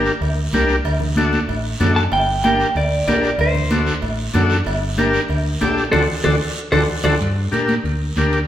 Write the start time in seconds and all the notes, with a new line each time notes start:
Already playing: D4 G4 A#4
0.06 short guiro
0.21 D2, cowbell, long guiro
0.53 C2 D4 G4 A#4, cowbell, high conga, short guiro
0.68 short guiro
0.85 D2, cowbell, long guiro
1.00 low conga
1.16 D4 F#4 A4, cowbell, high conga, short guiro
1.33 high conga, short guiro
1.48 A1, cowbell, long guiro
1.80 F#2 D4 F#4 A4, cowbell, high conga, low conga, low timbale, short guiro
1.96 A5, short guiro
2.12 G1 G5, cowbell, long guiro
2.44 D4 G4 A#4 G5, cowbell, high conga, short guiro
2.60 short guiro
2.75 D2 D5, cowbell, long guiro
3.07 A#1 D4 G4 A#4 D5, cowbell, high conga, low timbale, short guiro
3.23 short guiro
3.38 D2 C5, cowbell, long guiro
3.55 low conga
3.71 D4 F#4 A4, cowbell, high conga, short guiro
3.87 short guiro
4.02 A1, cowbell, long guiro
4.34 F#2 D4 F#4 A4, cowbell, high conga, low conga, low timbale, short guiro
4.50 short guiro
4.65 G1, cowbell, long guiro
4.97 D4 G4 A#4, cowbell, high conga, short guiro
5.13 short guiro
5.29 D2, cowbell, long guiro
5.61 A#1 D4 G4 A4, cowbell, high conga, low timbale, short guiro
5.77 short guiro
5.92 D2 D4 F#4 A4 C5 D5, low conga, high timbale, long guiro
6.24 D2 D4 F#4 A4 C5 D5, low conga, high timbale, long guiro
6.72 D2 D4 F#4 A4 C5 D5, low conga, high timbale, long guiro
7.04 D2 D4 F#4 A4 C5 D5, low conga, high timbale, long guiro
7.20 G2, high timbale, long guiro
7.52 A#2 D4 G4 A#4, high conga, high timbale, short guiro
7.68 high conga, high timbale, short guiro
7.84 D2, high timbale, long guiro
8.16 D2 D4 G4 A#4, high conga, high timbale, short guiro
8.32 high timbale, short guiro